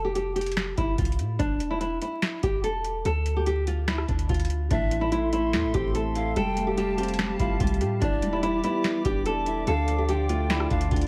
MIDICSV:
0, 0, Header, 1, 7, 480
1, 0, Start_track
1, 0, Key_signature, 0, "minor"
1, 0, Tempo, 413793
1, 1618, Time_signature, 4, 2, 24, 8
1, 12848, End_track
2, 0, Start_track
2, 0, Title_t, "Pan flute"
2, 0, Program_c, 0, 75
2, 5462, Note_on_c, 0, 76, 107
2, 5911, Note_off_c, 0, 76, 0
2, 7140, Note_on_c, 0, 77, 87
2, 7367, Note_off_c, 0, 77, 0
2, 7377, Note_on_c, 0, 79, 116
2, 7829, Note_off_c, 0, 79, 0
2, 7859, Note_on_c, 0, 81, 86
2, 8536, Note_off_c, 0, 81, 0
2, 8579, Note_on_c, 0, 77, 76
2, 8807, Note_off_c, 0, 77, 0
2, 9297, Note_on_c, 0, 74, 108
2, 9749, Note_off_c, 0, 74, 0
2, 10977, Note_on_c, 0, 76, 82
2, 11206, Note_off_c, 0, 76, 0
2, 11219, Note_on_c, 0, 77, 106
2, 11670, Note_off_c, 0, 77, 0
2, 11701, Note_on_c, 0, 79, 94
2, 12377, Note_off_c, 0, 79, 0
2, 12419, Note_on_c, 0, 77, 82
2, 12647, Note_off_c, 0, 77, 0
2, 12848, End_track
3, 0, Start_track
3, 0, Title_t, "Analog synth pad"
3, 0, Program_c, 1, 89
3, 5457, Note_on_c, 1, 69, 86
3, 5458, Note_on_c, 1, 76, 81
3, 5458, Note_on_c, 1, 84, 95
3, 7359, Note_off_c, 1, 69, 0
3, 7359, Note_off_c, 1, 76, 0
3, 7359, Note_off_c, 1, 84, 0
3, 7378, Note_on_c, 1, 67, 90
3, 7379, Note_on_c, 1, 77, 78
3, 7379, Note_on_c, 1, 81, 95
3, 9279, Note_off_c, 1, 67, 0
3, 9280, Note_off_c, 1, 77, 0
3, 9280, Note_off_c, 1, 81, 0
3, 9296, Note_on_c, 1, 67, 85
3, 9297, Note_on_c, 1, 74, 77
3, 9297, Note_on_c, 1, 86, 95
3, 11198, Note_off_c, 1, 67, 0
3, 11218, Note_on_c, 1, 65, 90
3, 12848, Note_off_c, 1, 65, 0
3, 12848, Note_off_c, 1, 74, 0
3, 12848, Note_off_c, 1, 86, 0
3, 12848, End_track
4, 0, Start_track
4, 0, Title_t, "Nylon-string guitar"
4, 0, Program_c, 2, 24
4, 54, Note_on_c, 2, 67, 78
4, 152, Note_off_c, 2, 67, 0
4, 178, Note_on_c, 2, 67, 83
4, 370, Note_off_c, 2, 67, 0
4, 414, Note_on_c, 2, 67, 79
4, 868, Note_off_c, 2, 67, 0
4, 899, Note_on_c, 2, 64, 86
4, 1091, Note_off_c, 2, 64, 0
4, 1138, Note_on_c, 2, 65, 75
4, 1590, Note_off_c, 2, 65, 0
4, 1613, Note_on_c, 2, 62, 107
4, 1954, Note_off_c, 2, 62, 0
4, 1979, Note_on_c, 2, 64, 77
4, 2075, Note_off_c, 2, 64, 0
4, 2095, Note_on_c, 2, 64, 89
4, 2288, Note_off_c, 2, 64, 0
4, 2343, Note_on_c, 2, 64, 86
4, 2792, Note_off_c, 2, 64, 0
4, 2821, Note_on_c, 2, 67, 87
4, 3012, Note_off_c, 2, 67, 0
4, 3059, Note_on_c, 2, 69, 89
4, 3510, Note_off_c, 2, 69, 0
4, 3545, Note_on_c, 2, 69, 108
4, 3881, Note_off_c, 2, 69, 0
4, 3904, Note_on_c, 2, 67, 74
4, 3997, Note_off_c, 2, 67, 0
4, 4022, Note_on_c, 2, 67, 82
4, 4212, Note_off_c, 2, 67, 0
4, 4262, Note_on_c, 2, 65, 90
4, 4453, Note_off_c, 2, 65, 0
4, 4504, Note_on_c, 2, 64, 76
4, 4694, Note_off_c, 2, 64, 0
4, 4734, Note_on_c, 2, 62, 79
4, 4928, Note_off_c, 2, 62, 0
4, 4983, Note_on_c, 2, 65, 81
4, 5432, Note_off_c, 2, 65, 0
4, 5458, Note_on_c, 2, 62, 110
4, 5797, Note_off_c, 2, 62, 0
4, 5813, Note_on_c, 2, 64, 81
4, 5911, Note_off_c, 2, 64, 0
4, 5939, Note_on_c, 2, 64, 83
4, 6130, Note_off_c, 2, 64, 0
4, 6181, Note_on_c, 2, 64, 80
4, 6631, Note_off_c, 2, 64, 0
4, 6663, Note_on_c, 2, 67, 92
4, 6853, Note_off_c, 2, 67, 0
4, 6902, Note_on_c, 2, 69, 90
4, 7352, Note_off_c, 2, 69, 0
4, 7384, Note_on_c, 2, 69, 106
4, 7720, Note_off_c, 2, 69, 0
4, 7736, Note_on_c, 2, 67, 83
4, 7833, Note_off_c, 2, 67, 0
4, 7859, Note_on_c, 2, 67, 85
4, 8051, Note_off_c, 2, 67, 0
4, 8094, Note_on_c, 2, 67, 81
4, 8548, Note_off_c, 2, 67, 0
4, 8579, Note_on_c, 2, 64, 89
4, 8771, Note_off_c, 2, 64, 0
4, 8820, Note_on_c, 2, 65, 74
4, 9271, Note_off_c, 2, 65, 0
4, 9296, Note_on_c, 2, 62, 107
4, 9636, Note_off_c, 2, 62, 0
4, 9659, Note_on_c, 2, 64, 79
4, 9755, Note_off_c, 2, 64, 0
4, 9776, Note_on_c, 2, 64, 91
4, 9969, Note_off_c, 2, 64, 0
4, 10024, Note_on_c, 2, 64, 89
4, 10473, Note_off_c, 2, 64, 0
4, 10501, Note_on_c, 2, 67, 88
4, 10692, Note_off_c, 2, 67, 0
4, 10741, Note_on_c, 2, 69, 92
4, 11191, Note_off_c, 2, 69, 0
4, 11224, Note_on_c, 2, 69, 111
4, 11560, Note_off_c, 2, 69, 0
4, 11581, Note_on_c, 2, 67, 74
4, 11676, Note_off_c, 2, 67, 0
4, 11701, Note_on_c, 2, 67, 86
4, 11892, Note_off_c, 2, 67, 0
4, 11941, Note_on_c, 2, 65, 90
4, 12132, Note_off_c, 2, 65, 0
4, 12182, Note_on_c, 2, 64, 81
4, 12373, Note_off_c, 2, 64, 0
4, 12415, Note_on_c, 2, 62, 81
4, 12608, Note_off_c, 2, 62, 0
4, 12662, Note_on_c, 2, 65, 84
4, 12848, Note_off_c, 2, 65, 0
4, 12848, End_track
5, 0, Start_track
5, 0, Title_t, "Grand piano"
5, 0, Program_c, 3, 0
5, 5460, Note_on_c, 3, 45, 92
5, 5642, Control_c, 3, 64, 127
5, 5700, Note_on_c, 3, 52, 80
5, 5924, Note_off_c, 3, 45, 0
5, 5941, Note_on_c, 3, 45, 89
5, 6180, Note_on_c, 3, 57, 79
5, 6402, Note_off_c, 3, 45, 0
5, 6419, Note_on_c, 3, 45, 95
5, 6659, Note_on_c, 3, 60, 87
5, 6884, Note_off_c, 3, 45, 0
5, 6900, Note_off_c, 3, 52, 0
5, 6901, Note_on_c, 3, 45, 94
5, 7139, Note_on_c, 3, 64, 87
5, 7379, Note_off_c, 3, 57, 0
5, 7379, Note_off_c, 3, 60, 0
5, 7379, Note_off_c, 3, 64, 0
5, 7379, Note_on_c, 3, 55, 102
5, 7380, Note_off_c, 3, 45, 0
5, 7395, Control_c, 3, 64, 0
5, 7575, Control_c, 3, 64, 127
5, 7618, Note_on_c, 3, 57, 84
5, 7842, Note_off_c, 3, 55, 0
5, 7859, Note_on_c, 3, 55, 80
5, 8099, Note_on_c, 3, 60, 85
5, 8320, Note_off_c, 3, 55, 0
5, 8337, Note_on_c, 3, 55, 90
5, 8581, Note_on_c, 3, 65, 88
5, 8801, Note_off_c, 3, 55, 0
5, 8818, Note_off_c, 3, 57, 0
5, 8819, Note_on_c, 3, 55, 84
5, 9058, Note_on_c, 3, 67, 99
5, 9299, Note_off_c, 3, 55, 0
5, 9299, Note_off_c, 3, 60, 0
5, 9299, Note_off_c, 3, 67, 0
5, 9299, Note_on_c, 3, 52, 101
5, 9300, Note_off_c, 3, 65, 0
5, 9312, Control_c, 3, 64, 0
5, 9518, Control_c, 3, 64, 127
5, 9538, Note_on_c, 3, 55, 86
5, 9762, Note_off_c, 3, 52, 0
5, 9779, Note_on_c, 3, 52, 83
5, 10020, Note_on_c, 3, 59, 85
5, 10242, Note_off_c, 3, 52, 0
5, 10259, Note_on_c, 3, 52, 88
5, 10499, Note_on_c, 3, 62, 86
5, 10722, Note_off_c, 3, 52, 0
5, 10738, Note_off_c, 3, 55, 0
5, 10739, Note_on_c, 3, 52, 85
5, 10979, Note_on_c, 3, 64, 83
5, 11219, Note_off_c, 3, 52, 0
5, 11219, Note_off_c, 3, 59, 0
5, 11219, Note_off_c, 3, 62, 0
5, 11219, Note_off_c, 3, 64, 0
5, 11220, Note_on_c, 3, 50, 98
5, 11235, Control_c, 3, 64, 0
5, 11432, Control_c, 3, 64, 127
5, 11458, Note_on_c, 3, 53, 79
5, 11681, Note_off_c, 3, 50, 0
5, 11699, Note_on_c, 3, 50, 85
5, 11938, Note_on_c, 3, 57, 85
5, 12162, Note_off_c, 3, 50, 0
5, 12180, Note_on_c, 3, 50, 84
5, 12420, Note_on_c, 3, 62, 88
5, 12643, Note_off_c, 3, 50, 0
5, 12659, Note_off_c, 3, 53, 0
5, 12661, Note_on_c, 3, 50, 84
5, 12848, Note_off_c, 3, 50, 0
5, 12848, Note_off_c, 3, 57, 0
5, 12848, Note_off_c, 3, 62, 0
5, 12848, End_track
6, 0, Start_track
6, 0, Title_t, "808-style bass"
6, 0, Program_c, 4, 38
6, 0, Note_on_c, 4, 29, 118
6, 852, Note_off_c, 4, 29, 0
6, 900, Note_on_c, 4, 29, 106
6, 1130, Note_off_c, 4, 29, 0
6, 1138, Note_on_c, 4, 36, 103
6, 1379, Note_on_c, 4, 45, 97
6, 1396, Note_off_c, 4, 36, 0
6, 1607, Note_off_c, 4, 45, 0
6, 1619, Note_on_c, 4, 28, 121
6, 2310, Note_off_c, 4, 28, 0
6, 2820, Note_on_c, 4, 28, 104
6, 3511, Note_off_c, 4, 28, 0
6, 3539, Note_on_c, 4, 38, 113
6, 4692, Note_off_c, 4, 38, 0
6, 4740, Note_on_c, 4, 38, 104
6, 4970, Note_off_c, 4, 38, 0
6, 4979, Note_on_c, 4, 38, 102
6, 5440, Note_off_c, 4, 38, 0
6, 5459, Note_on_c, 4, 33, 114
6, 6418, Note_on_c, 4, 40, 98
6, 6436, Note_off_c, 4, 33, 0
6, 6537, Note_on_c, 4, 33, 97
6, 6555, Note_off_c, 4, 40, 0
6, 6652, Note_off_c, 4, 33, 0
6, 6660, Note_on_c, 4, 33, 106
6, 7351, Note_off_c, 4, 33, 0
6, 7379, Note_on_c, 4, 29, 117
6, 8532, Note_off_c, 4, 29, 0
6, 8580, Note_on_c, 4, 29, 107
6, 8810, Note_off_c, 4, 29, 0
6, 8818, Note_on_c, 4, 36, 104
6, 9058, Note_on_c, 4, 45, 99
6, 9076, Note_off_c, 4, 36, 0
6, 9286, Note_off_c, 4, 45, 0
6, 9299, Note_on_c, 4, 28, 116
6, 9990, Note_off_c, 4, 28, 0
6, 10499, Note_on_c, 4, 28, 105
6, 11190, Note_off_c, 4, 28, 0
6, 11218, Note_on_c, 4, 38, 114
6, 12372, Note_off_c, 4, 38, 0
6, 12420, Note_on_c, 4, 38, 109
6, 12650, Note_off_c, 4, 38, 0
6, 12658, Note_on_c, 4, 38, 107
6, 12848, Note_off_c, 4, 38, 0
6, 12848, End_track
7, 0, Start_track
7, 0, Title_t, "Drums"
7, 179, Note_on_c, 9, 42, 73
7, 295, Note_off_c, 9, 42, 0
7, 419, Note_on_c, 9, 42, 67
7, 479, Note_off_c, 9, 42, 0
7, 479, Note_on_c, 9, 42, 70
7, 539, Note_off_c, 9, 42, 0
7, 539, Note_on_c, 9, 42, 68
7, 599, Note_off_c, 9, 42, 0
7, 599, Note_on_c, 9, 42, 70
7, 659, Note_off_c, 9, 42, 0
7, 659, Note_on_c, 9, 38, 117
7, 659, Note_on_c, 9, 42, 65
7, 775, Note_off_c, 9, 38, 0
7, 775, Note_off_c, 9, 42, 0
7, 899, Note_on_c, 9, 42, 67
7, 900, Note_on_c, 9, 36, 90
7, 1015, Note_off_c, 9, 42, 0
7, 1016, Note_off_c, 9, 36, 0
7, 1138, Note_on_c, 9, 36, 100
7, 1139, Note_on_c, 9, 42, 78
7, 1219, Note_off_c, 9, 42, 0
7, 1219, Note_on_c, 9, 42, 60
7, 1254, Note_off_c, 9, 36, 0
7, 1300, Note_off_c, 9, 42, 0
7, 1300, Note_on_c, 9, 42, 45
7, 1379, Note_off_c, 9, 42, 0
7, 1379, Note_on_c, 9, 42, 78
7, 1495, Note_off_c, 9, 42, 0
7, 1619, Note_on_c, 9, 36, 108
7, 1619, Note_on_c, 9, 42, 74
7, 1735, Note_off_c, 9, 36, 0
7, 1735, Note_off_c, 9, 42, 0
7, 1859, Note_on_c, 9, 42, 90
7, 1975, Note_off_c, 9, 42, 0
7, 2099, Note_on_c, 9, 42, 73
7, 2215, Note_off_c, 9, 42, 0
7, 2339, Note_on_c, 9, 42, 79
7, 2455, Note_off_c, 9, 42, 0
7, 2579, Note_on_c, 9, 38, 115
7, 2579, Note_on_c, 9, 42, 65
7, 2695, Note_off_c, 9, 38, 0
7, 2695, Note_off_c, 9, 42, 0
7, 2819, Note_on_c, 9, 42, 69
7, 2820, Note_on_c, 9, 36, 85
7, 2935, Note_off_c, 9, 42, 0
7, 2936, Note_off_c, 9, 36, 0
7, 3060, Note_on_c, 9, 42, 77
7, 3176, Note_off_c, 9, 42, 0
7, 3300, Note_on_c, 9, 42, 71
7, 3416, Note_off_c, 9, 42, 0
7, 3539, Note_on_c, 9, 42, 78
7, 3655, Note_off_c, 9, 42, 0
7, 3779, Note_on_c, 9, 42, 89
7, 3895, Note_off_c, 9, 42, 0
7, 4019, Note_on_c, 9, 42, 73
7, 4135, Note_off_c, 9, 42, 0
7, 4259, Note_on_c, 9, 42, 78
7, 4375, Note_off_c, 9, 42, 0
7, 4499, Note_on_c, 9, 38, 112
7, 4499, Note_on_c, 9, 42, 65
7, 4615, Note_off_c, 9, 38, 0
7, 4615, Note_off_c, 9, 42, 0
7, 4619, Note_on_c, 9, 37, 84
7, 4735, Note_off_c, 9, 37, 0
7, 4739, Note_on_c, 9, 42, 42
7, 4740, Note_on_c, 9, 36, 88
7, 4855, Note_off_c, 9, 42, 0
7, 4856, Note_off_c, 9, 36, 0
7, 4859, Note_on_c, 9, 42, 69
7, 4975, Note_off_c, 9, 42, 0
7, 4978, Note_on_c, 9, 36, 104
7, 4979, Note_on_c, 9, 42, 48
7, 5039, Note_off_c, 9, 42, 0
7, 5039, Note_on_c, 9, 42, 58
7, 5094, Note_off_c, 9, 36, 0
7, 5099, Note_off_c, 9, 42, 0
7, 5099, Note_on_c, 9, 42, 69
7, 5159, Note_off_c, 9, 42, 0
7, 5159, Note_on_c, 9, 42, 77
7, 5219, Note_off_c, 9, 42, 0
7, 5219, Note_on_c, 9, 42, 79
7, 5335, Note_off_c, 9, 42, 0
7, 5459, Note_on_c, 9, 36, 113
7, 5459, Note_on_c, 9, 42, 78
7, 5575, Note_off_c, 9, 36, 0
7, 5575, Note_off_c, 9, 42, 0
7, 5699, Note_on_c, 9, 42, 92
7, 5815, Note_off_c, 9, 42, 0
7, 5939, Note_on_c, 9, 42, 73
7, 6055, Note_off_c, 9, 42, 0
7, 6179, Note_on_c, 9, 42, 82
7, 6295, Note_off_c, 9, 42, 0
7, 6420, Note_on_c, 9, 38, 116
7, 6420, Note_on_c, 9, 42, 65
7, 6536, Note_off_c, 9, 38, 0
7, 6536, Note_off_c, 9, 42, 0
7, 6659, Note_on_c, 9, 42, 71
7, 6660, Note_on_c, 9, 36, 91
7, 6775, Note_off_c, 9, 42, 0
7, 6776, Note_off_c, 9, 36, 0
7, 6899, Note_on_c, 9, 42, 80
7, 7015, Note_off_c, 9, 42, 0
7, 7139, Note_on_c, 9, 42, 74
7, 7255, Note_off_c, 9, 42, 0
7, 7379, Note_on_c, 9, 42, 80
7, 7495, Note_off_c, 9, 42, 0
7, 7618, Note_on_c, 9, 42, 92
7, 7734, Note_off_c, 9, 42, 0
7, 7859, Note_on_c, 9, 42, 76
7, 7975, Note_off_c, 9, 42, 0
7, 8099, Note_on_c, 9, 42, 69
7, 8159, Note_off_c, 9, 42, 0
7, 8159, Note_on_c, 9, 42, 67
7, 8218, Note_off_c, 9, 42, 0
7, 8218, Note_on_c, 9, 42, 71
7, 8279, Note_off_c, 9, 42, 0
7, 8279, Note_on_c, 9, 42, 73
7, 8339, Note_off_c, 9, 42, 0
7, 8339, Note_on_c, 9, 38, 118
7, 8339, Note_on_c, 9, 42, 65
7, 8455, Note_off_c, 9, 38, 0
7, 8455, Note_off_c, 9, 42, 0
7, 8579, Note_on_c, 9, 42, 71
7, 8580, Note_on_c, 9, 36, 91
7, 8695, Note_off_c, 9, 42, 0
7, 8696, Note_off_c, 9, 36, 0
7, 8818, Note_on_c, 9, 36, 108
7, 8819, Note_on_c, 9, 42, 82
7, 8899, Note_off_c, 9, 42, 0
7, 8899, Note_on_c, 9, 42, 65
7, 8934, Note_off_c, 9, 36, 0
7, 8979, Note_off_c, 9, 42, 0
7, 8979, Note_on_c, 9, 42, 47
7, 9058, Note_off_c, 9, 42, 0
7, 9058, Note_on_c, 9, 42, 80
7, 9174, Note_off_c, 9, 42, 0
7, 9299, Note_on_c, 9, 36, 114
7, 9299, Note_on_c, 9, 42, 79
7, 9415, Note_off_c, 9, 36, 0
7, 9415, Note_off_c, 9, 42, 0
7, 9539, Note_on_c, 9, 42, 93
7, 9655, Note_off_c, 9, 42, 0
7, 9778, Note_on_c, 9, 42, 75
7, 9894, Note_off_c, 9, 42, 0
7, 10018, Note_on_c, 9, 42, 82
7, 10134, Note_off_c, 9, 42, 0
7, 10258, Note_on_c, 9, 38, 120
7, 10258, Note_on_c, 9, 42, 67
7, 10374, Note_off_c, 9, 38, 0
7, 10374, Note_off_c, 9, 42, 0
7, 10498, Note_on_c, 9, 42, 72
7, 10499, Note_on_c, 9, 36, 91
7, 10614, Note_off_c, 9, 42, 0
7, 10615, Note_off_c, 9, 36, 0
7, 10738, Note_on_c, 9, 42, 78
7, 10854, Note_off_c, 9, 42, 0
7, 10978, Note_on_c, 9, 42, 73
7, 11094, Note_off_c, 9, 42, 0
7, 11218, Note_on_c, 9, 42, 77
7, 11334, Note_off_c, 9, 42, 0
7, 11458, Note_on_c, 9, 42, 92
7, 11574, Note_off_c, 9, 42, 0
7, 11699, Note_on_c, 9, 42, 74
7, 11815, Note_off_c, 9, 42, 0
7, 11939, Note_on_c, 9, 42, 81
7, 12055, Note_off_c, 9, 42, 0
7, 12178, Note_on_c, 9, 42, 66
7, 12179, Note_on_c, 9, 38, 116
7, 12294, Note_off_c, 9, 42, 0
7, 12295, Note_off_c, 9, 38, 0
7, 12298, Note_on_c, 9, 37, 87
7, 12414, Note_off_c, 9, 37, 0
7, 12419, Note_on_c, 9, 42, 44
7, 12420, Note_on_c, 9, 36, 93
7, 12535, Note_off_c, 9, 42, 0
7, 12536, Note_off_c, 9, 36, 0
7, 12538, Note_on_c, 9, 42, 71
7, 12654, Note_off_c, 9, 42, 0
7, 12658, Note_on_c, 9, 36, 107
7, 12659, Note_on_c, 9, 42, 49
7, 12718, Note_off_c, 9, 42, 0
7, 12718, Note_on_c, 9, 42, 59
7, 12774, Note_off_c, 9, 36, 0
7, 12778, Note_off_c, 9, 42, 0
7, 12778, Note_on_c, 9, 42, 68
7, 12848, Note_off_c, 9, 42, 0
7, 12848, End_track
0, 0, End_of_file